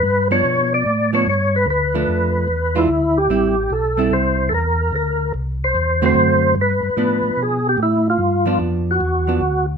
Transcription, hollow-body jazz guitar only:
X:1
M:4/4
L:1/8
Q:"Swing" 1/4=147
K:Gmix
V:1 name="Hollow-body jazz guitar"
z [F,B,D]3 z [F,B,D] z2 | z [F,A,D]3 z [E,^G,DF] z2 | [G,CE] z2 [G,CE]3 z2 | z4 z [D,A,C^F]3 |
z2 [F,B,D]3 z3 | z [F,B,D]3 z [F,B,D] z2 |]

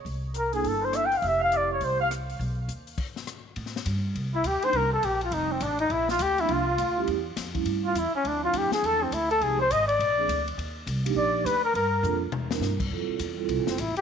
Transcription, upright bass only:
X:1
M:4/4
L:1/8
Q:"Swing" 1/4=205
K:F
V:1 name="Upright bass" clef=bass
C,,4 G,,,4 | F,,,4 C,,4 | =B,,,2 ^D,,2 z4 | A,,2 G,,2 C,,2 D,, z |
C,,2 B,,,2 F,,,2 A,,,2 | B,,,2 D,,2 C,,2 D,,2 | E,,2 F,,2 G,,2 E,, z | D,,2 F,, z E,,2 D,,2 |
C,,2 _A,,,2 B,,,2 D,,2 | _E,,2 C,,2 B,,,2 D,,2 | G,,2 F,,2 E,,2 G,,2 | F,, z E,,2 (3C,, A,,, F,,, A,,, z |]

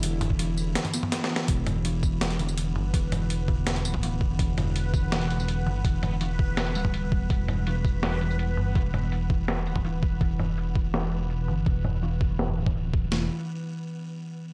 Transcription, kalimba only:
X:1
M:4/4
L:1/8
Q:1/4=165
K:Gmix
V:1 name="Kalimba" clef=bass
D,2 E, z2 B, z E, | z2 E, z2 D,3 | E, z2 D,3 E, z | z D,3 E, z2 D,- |
D,2 E, z2 G, z2 | z2 E, z2 E, z2 | E, z2 E, z2 E, z | z E, z2 E, z2 E, |
z2 E, z2 E, z2 | E, z6 z |]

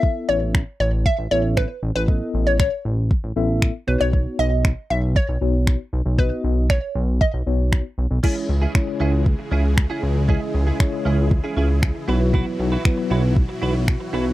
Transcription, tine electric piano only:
X:1
M:4/4
L:1/8
Q:1/4=117
K:C#m
V:1 name="Tine electric piano"
[B,EAe]2 z3 [B,EAe] z2 | [B,EAd]2 z3 [B,EAe] z [B,DFc]- | [B,DFc]2 z3 [B,DFc] z2 | [B,DFd]2 z3 [B,DFc] z2 |
[G,CEc] z [G,CEc]2 z4 | [G,CEd] z [G,CEc]2 z3 [F,B,EB]- | [F,B,EB] z [F,B,EB]2 z4 |]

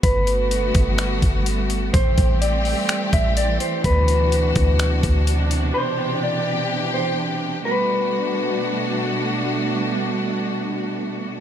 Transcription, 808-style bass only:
X:1
M:4/4
L:1/16
Q:1/4=126
K:G
V:1 name="808-style bass" clef=bass
G,,,6 G,,,4 G,,,6 | A,,,2 A,,,4- A,,, z3 A,,,4 z2 | D,,6 D,,4 D,,6 | z16 |
z16 | z16 |]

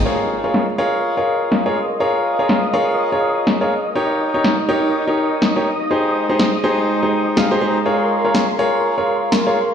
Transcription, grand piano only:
X:1
M:4/4
L:1/16
Q:"Swing 16ths" 1/4=123
K:Bbdor
V:1 name="Grand piano"
[FABd]3 [FABd]2 z [FABd]3 [FABd]4 [FABd] z2 | [FABd]3 [FABd]2 z [FABd]3 [FABd]4 [FABd] z2 | [EGBd]3 [EGBd]2 z [EGBd]3 [EGBd]4 [EGBd] z2 | [EGAc]3 [EGAc]2 z [EGAc]3 [EGAc]3 [EGAf] [EGAc] [EGAc] z |
[FABd]3 [FABd]2 z [FABd]3 [FABd]4 [FABd] z2 |]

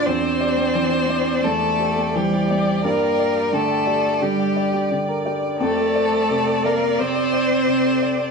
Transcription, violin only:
X:1
M:4/4
L:1/8
Q:1/4=86
K:F
V:1 name="Violin"
c4 A2 G2 | B2 A2 G2 z2 | A3 B c4 |]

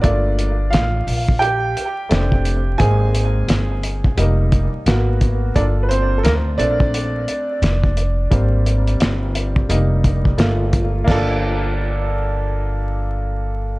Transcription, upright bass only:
X:1
M:4/4
L:1/16
Q:"Swing 16ths" 1/4=87
K:Gm
V:1 name="Upright bass" clef=bass
G,,,4 A,,,2 B,,,4 z2 F,,,4 | _A,,,4 G,,,4 F,,,3 z A,,,4 | G,,,4 D,,2 B,,,4 z2 F,,,4 | _A,,,4 G,,,4 F,,,4 G,,,4 |
G,,,16 |]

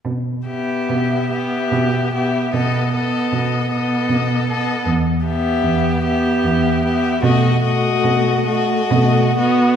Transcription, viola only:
X:1
M:3/4
L:1/8
Q:1/4=75
K:Em
V:1 name="Viola"
z B,2 B,2 B, | B, B,2 B,2 B, | z B,2 B,2 B, | A, A,2 A, A, B, |]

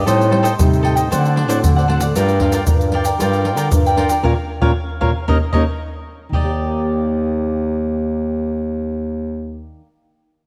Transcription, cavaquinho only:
X:1
M:4/4
L:1/16
Q:1/4=115
K:Eb
V:1 name="Cavaquinho"
[=Aceg]2 [Aceg] [Aceg] z2 [Aceg] [ceg] [Dcd^f]2 [Dcdf] [Dcdf] z [cdf] [Dcdf] [cdf] | [FBdg]2 [FBdg] [FBdg] z2 [FBdg] [Bdg] [FBdg]2 [FBdg] [FBdg] z [Bdg] [FBdg] [Bdg] | [B_df] z2 [Bdf] z2 [Bdf] z [Bde] z [Bde] z4 z | [Gde]16- |
[Gde]16 |]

